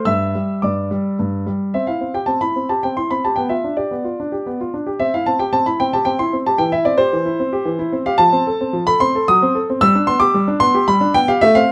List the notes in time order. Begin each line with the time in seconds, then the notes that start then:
0.05 G2 E5 E6
0.35 G3
0.62 G2 D5 D6
0.91 G3
1.19 G2
1.46 G3
1.74 C4 E5
1.87 E4 F5
2.01 C4
2.14 G4 G5
2.26 C4 A5
2.41 E4 B5
2.56 C4
2.69 G4 A5
2.83 C4 G5
2.97 E4 C6
3.11 C4 B5
3.25 G4 A5
3.36 B3 G5
3.49 F4 E5
3.64 D4
3.77 G4 D5
3.91 B3
4.04 F4
4.20 D4
4.32 G4
4.46 B3
4.61 F4
4.74 D4
4.87 G4
5.00 C4 E5
5.14 E4 F5
5.26 C4 A5
5.39 G4 G5
5.53 C4 A5
5.66 E4 B5
5.80 C4 G5
5.93 G4 A5
6.05 C4 G5
6.19 E4 C6
6.33 C4
6.46 G4 A5
6.58 E3 G5
6.72 E4 E5
6.85 C4 D5
6.98 G4 C5
7.13 E3
7.25 E4
7.40 C4
7.53 G4
7.65 E3
7.79 E4
7.93 C4
8.06 G4 F5
8.18 F3 A5
8.33 C4
8.47 A4
8.61 C4
8.73 F3
8.87 A4 B5
9.00 C4 C6
9.15 A4
9.28 F#3 D#6
9.42 C4
9.55 A4
9.70 C4
9.81 G3 E6
9.95 D4
10.07 B3 C6
10.20 G4 D6
10.34 G3
10.48 D4
10.60 B3 C6
10.75 G4
10.88 G3 B5
11.01 D4
11.14 B3 G5
11.28 G4 F5
11.41 A3 E5
11.55 C4 F5